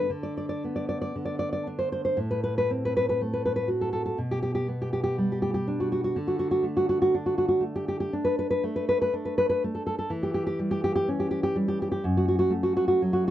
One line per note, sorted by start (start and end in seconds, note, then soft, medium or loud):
0.00 0.10 B3 soft
0.00 1.16 D4 soft
0.10 1.14 D3 soft
0.23 0.36 D5 soft
0.38 0.48 D5 soft
0.49 0.62 D5 soft
0.64 2.19 B3 soft
0.76 0.88 D5 soft
0.89 1.00 D5 soft
1.02 1.15 D5 soft
1.16 2.19 D3 soft
1.25 1.38 D5 soft
1.39 1.51 D5 soft
1.53 1.66 D5 soft
1.67 2.18 D4 soft
1.79 1.91 C5 soft
1.92 2.04 C5 soft
2.05 2.18 C5 soft
2.17 4.11 A2 soft
2.31 2.42 B4 soft
2.44 2.56 B4 soft
2.58 2.70 B4 medium
2.70 4.17 C4 soft
2.85 2.95 B4 medium
2.97 3.08 B4 soft
3.09 3.20 B4 medium
3.21 4.17 A3 soft
3.33 3.44 B4 soft
3.46 3.55 B4 soft
3.56 3.68 B4 soft
3.68 4.16 F#4 soft
3.81 3.92 A4 soft
3.93 4.04 A4 soft
4.06 4.17 A4 soft
4.18 6.13 B2 soft
4.31 4.41 G4 soft
4.43 4.54 G4 soft
4.55 4.66 G4 soft
4.68 6.17 B3 soft
4.82 4.92 G4 soft
4.93 5.02 G4 soft
5.04 5.16 G4 soft
5.18 6.16 G3 soft
5.32 5.41 G4 soft
5.42 5.53 G4 soft
5.54 5.66 G4 soft
5.68 6.16 D4 soft
5.80 5.91 F#4 soft
5.92 6.03 F#4 soft
6.04 6.16 F#4 soft
6.16 8.09 D3 soft
6.27 6.38 F#4 soft
6.39 6.50 F#4 soft
6.51 6.64 F#4 medium
6.63 7.59 A3 soft
6.77 6.88 F#4 soft
6.89 7.01 F#4 soft
7.02 7.14 F#4 medium
7.14 8.12 D4 soft
7.26 7.37 F#4 soft
7.38 7.47 F#4 soft
7.48 7.62 F#4 soft
7.61 8.62 A3 soft
7.76 7.87 G4 soft
7.88 7.99 G4 soft
8.00 8.13 G4 soft
8.13 9.12 D4 soft
8.25 8.38 B4 soft
8.39 8.49 B4 medium
8.50 8.63 B4 medium
8.64 9.63 A3 soft
8.76 8.87 B4 soft
8.89 9.00 B4 medium
9.02 9.13 B4 medium
9.13 10.10 D4 soft
9.25 9.37 B4 soft
9.38 9.48 B4 medium
9.50 9.62 B4 medium
9.64 10.11 A3 soft
9.75 9.85 A4 soft
9.87 9.97 A4 soft
9.99 10.10 A4 soft
10.10 12.00 E3 soft
10.23 10.33 G4 soft
10.34 10.45 G4 soft
10.47 10.59 G4 medium
10.59 11.54 G3 soft
10.71 10.83 G4 soft
10.84 10.94 G4 medium
10.96 11.08 G4 medium
11.08 12.04 C#4 soft
11.20 11.30 G4 soft
11.31 11.42 G4 medium
11.43 11.56 G4 medium
11.56 12.03 G3 soft
11.68 11.80 G4 soft
11.82 11.90 G4 soft
11.92 12.04 G4 soft
12.04 13.30 F#2 soft
12.17 12.27 F#4 soft
12.28 12.38 F#4 medium
12.39 12.51 F#4 medium
12.50 13.30 A3 soft
12.63 12.75 F#4 soft
12.77 12.87 F#4 soft
12.88 13.01 F#4 medium
13.02 13.30 F#3 soft
13.13 13.27 F#4 soft